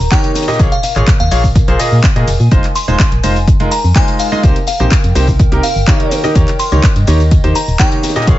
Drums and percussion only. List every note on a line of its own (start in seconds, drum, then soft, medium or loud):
0.00 tambourine soft
0.00 cabasa soft
0.11 kick loud
0.11 snare loud
0.11 clap loud
0.11 closed hi-hat medium
0.11 tambourine medium
0.11 cabasa soft
0.24 closed hi-hat soft
0.24 closed hi-hat medium
0.24 tambourine soft
0.35 snare loud
0.35 closed hi-hat medium
0.35 open hi-hat loud
0.35 tambourine medium
0.35 cabasa medium
0.42 snare medium
0.42 closed hi-hat medium
0.48 snare medium
0.48 closed hi-hat medium
0.48 tambourine soft
0.48 cabasa soft
0.53 snare medium
0.53 closed hi-hat medium
0.59 kick loud
0.59 closed hi-hat medium
0.59 closed hi-hat loud
0.59 tambourine medium
0.59 cabasa soft
0.72 closed hi-hat soft
0.72 tambourine soft
0.83 snare soft
0.83 closed hi-hat medium
0.83 open hi-hat loud
0.83 tambourine medium
0.83 cabasa medium
0.96 clap soft
0.96 closed hi-hat soft
0.96 tambourine soft
0.96 cabasa soft
1.07 kick loud
1.07 snare loud
1.07 clap loud
1.07 closed hi-hat medium
1.07 tambourine medium
1.07 cabasa soft
1.20 closed hi-hat soft
1.20 tambourine soft
1.31 closed hi-hat medium
1.31 open hi-hat loud
1.31 tambourine medium
1.31 cabasa medium
1.44 kick medium
1.44 tambourine soft
1.44 cabasa soft
1.55 kick loud
1.55 closed hi-hat medium
1.55 tambourine medium
1.55 cabasa soft
1.68 closed hi-hat soft
1.68 tambourine soft
1.79 closed hi-hat medium
1.79 open hi-hat loud
1.79 tambourine loud
1.79 cabasa medium
1.92 tambourine soft
1.92 cabasa soft
2.04 kick loud
2.04 snare loud
2.04 clap loud
2.04 closed hi-hat medium
2.04 tambourine medium
2.04 cabasa soft
2.16 closed hi-hat medium
2.16 tambourine soft
2.28 closed hi-hat medium
2.28 open hi-hat loud
2.28 tambourine medium
2.28 cabasa medium
2.40 tambourine soft
2.40 cabasa soft
2.51 kick loud
2.51 closed hi-hat medium
2.51 tambourine medium
2.51 cabasa soft
2.64 clap soft
2.64 closed hi-hat medium
2.64 tambourine soft
2.76 closed hi-hat medium
2.76 open hi-hat loud
2.76 tambourine loud
2.76 cabasa medium
2.88 closed hi-hat soft
2.88 tambourine soft
2.88 cabasa soft
2.99 kick loud
2.99 snare loud
2.99 clap loud
2.99 closed hi-hat medium
2.99 tambourine medium
2.99 cabasa soft
3.12 closed hi-hat medium
3.12 tambourine soft
3.24 closed hi-hat medium
3.24 open hi-hat loud
3.24 tambourine medium
3.24 cabasa medium
3.36 tambourine soft
3.36 cabasa soft
3.48 kick loud
3.48 closed hi-hat medium
3.48 closed hi-hat loud
3.48 tambourine soft
3.48 cabasa soft
3.60 closed hi-hat soft
3.60 tambourine soft
3.71 closed hi-hat medium
3.71 open hi-hat loud
3.71 tambourine medium
3.71 cabasa medium
3.84 tambourine soft
3.84 cabasa soft
3.96 kick loud
3.96 snare loud
3.96 clap loud
3.96 closed hi-hat medium
3.96 tambourine medium
3.96 cabasa soft
4.07 closed hi-hat soft
4.07 closed hi-hat medium
4.07 tambourine soft
4.19 closed hi-hat medium
4.19 open hi-hat loud
4.19 tambourine loud
4.19 cabasa medium
4.32 closed hi-hat soft
4.32 tambourine soft
4.32 cabasa soft
4.43 kick loud
4.43 closed hi-hat medium
4.43 tambourine medium
4.43 cabasa soft
4.56 closed hi-hat medium
4.56 tambourine soft
4.67 snare soft
4.67 closed hi-hat medium
4.67 open hi-hat loud
4.67 tambourine medium
4.67 cabasa medium
4.80 closed hi-hat soft
4.80 tambourine soft
4.80 cabasa soft
4.91 kick loud
4.91 snare loud
4.91 clap loud
4.91 closed hi-hat medium
4.91 tambourine soft
4.91 cabasa soft
5.04 closed hi-hat medium
5.04 tambourine soft
5.15 closed hi-hat medium
5.15 open hi-hat loud
5.15 tambourine medium
5.15 cabasa medium
5.27 kick medium
5.27 tambourine soft
5.27 cabasa soft
5.39 kick loud
5.39 closed hi-hat medium
5.39 tambourine medium
5.39 cabasa soft
5.52 closed hi-hat soft
5.52 tambourine soft
5.63 closed hi-hat medium
5.63 open hi-hat loud
5.63 tambourine medium
5.63 cabasa medium
5.76 tambourine soft
5.76 cabasa soft
5.87 kick loud
5.87 snare loud
5.87 clap loud
5.87 closed hi-hat medium
5.87 tambourine medium
5.87 cabasa soft
6.00 closed hi-hat medium
6.00 tambourine soft
6.11 snare loud
6.11 closed hi-hat medium
6.11 open hi-hat loud
6.11 tambourine loud
6.11 cabasa medium
6.24 snare loud
6.24 closed hi-hat medium
6.24 tambourine soft
6.24 cabasa soft
6.35 kick loud
6.35 closed hi-hat medium
6.35 tambourine soft
6.35 cabasa soft
6.48 clap soft
6.48 closed hi-hat medium
6.48 tambourine soft
6.59 closed hi-hat medium
6.59 open hi-hat loud
6.59 tambourine medium
6.59 cabasa medium
6.72 closed hi-hat soft
6.72 tambourine soft
6.72 cabasa soft
6.83 kick loud
6.83 snare loud
6.83 clap loud
6.83 closed hi-hat medium
6.83 tambourine soft
6.83 cabasa soft
6.96 closed hi-hat medium
6.96 tambourine soft
7.07 closed hi-hat medium
7.07 open hi-hat loud
7.07 tambourine medium
7.07 cabasa medium
7.20 tambourine soft
7.20 cabasa soft
7.31 kick loud
7.31 closed hi-hat medium
7.31 tambourine soft
7.31 cabasa soft
7.44 closed hi-hat medium
7.44 tambourine soft
7.55 closed hi-hat medium
7.55 open hi-hat loud
7.55 tambourine loud
7.55 cabasa medium
7.68 tambourine soft
7.68 cabasa soft
7.79 kick loud
7.79 snare loud
7.79 clap loud
7.79 closed hi-hat medium
7.79 tambourine soft
7.79 cabasa soft
7.92 closed hi-hat soft
7.92 closed hi-hat medium
7.92 tambourine soft
8.03 snare medium
8.03 closed hi-hat medium
8.03 open hi-hat loud
8.03 tambourine medium
8.03 cabasa medium
8.09 snare loud
8.09 closed hi-hat medium
8.15 snare medium
8.15 closed hi-hat medium
8.15 tambourine soft
8.15 cabasa soft
8.22 snare medium
8.22 closed hi-hat medium
8.27 kick loud
8.27 closed hi-hat medium
8.27 tambourine medium
8.27 cabasa soft